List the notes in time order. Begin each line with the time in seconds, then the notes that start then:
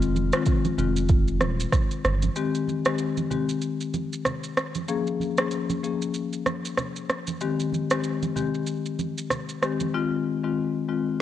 Already playing: F1 D#3 G#3 C4 F4
0.02 shaker
0.15 high conga, shaker
0.33 D#3 G#3 C4 F4, cross-stick, shaker
0.46 kick, low conga, shaker
0.65 high conga, shaker
0.78 F1 D#3 G#3 C4 F4, low conga, shaker
0.97 shaker
1.09 kick, shaker
1.28 shaker
1.41 D#1, cross-stick, high conga, shaker
1.60 shaker
1.72 kick, cross-stick, low conga, shaker
1.91 shaker
2.04 G1, cross-stick, shaker
2.22 high conga, shaker
2.36 D#3 G#3 C4 G4, shaker
2.55 shaker
2.67 high conga, shaker
2.85 D#3 G#3 C4 G4, cross-stick, shaker
2.98 shaker
3.17 high conga, shaker
3.30 D#3 G#3 C4 G4, low conga, shaker
3.49 shaker
3.61 shaker
3.80 shaker
3.94 high conga, shaker
4.13 shaker
4.25 cross-stick, low conga, shaker
4.44 shaker
4.57 cross-stick, shaker
4.75 high conga, shaker
4.88 F3 A#3 C#4 G#4, shaker
5.07 shaker
5.20 high conga, shaker
5.38 F3 A#3 C#4 G#4, cross-stick, shaker
5.51 shaker
5.70 high conga, shaker
5.83 F3 A#3 C#4 G#4, shaker
6.02 shaker
6.14 shaker
6.33 shaker
6.46 cross-stick, high conga, shaker
6.65 shaker
6.78 cross-stick, low conga, shaker
6.96 shaker
7.10 cross-stick, shaker
7.27 high conga, shaker
7.41 D#3 G#3 C4 G4, shaker
7.60 shaker
7.73 high conga, shaker
7.90 D#3 G#3 C4 G4, cross-stick, shaker
8.04 shaker
8.22 high conga, shaker
8.36 D#3 G#3 C4 G4, low conga, shaker
8.54 shaker
8.67 shaker
8.86 shaker
8.99 high conga, shaker
9.18 shaker
9.30 cross-stick, low conga, shaker
9.49 shaker
9.62 D#3 G#3 C4 G4, cross-stick, shaker
9.80 high conga, shaker
9.94 D#3 G#3 C4 F4
10.44 D#3 G#3 C4 F4
10.88 D#3 G#3 C4 F4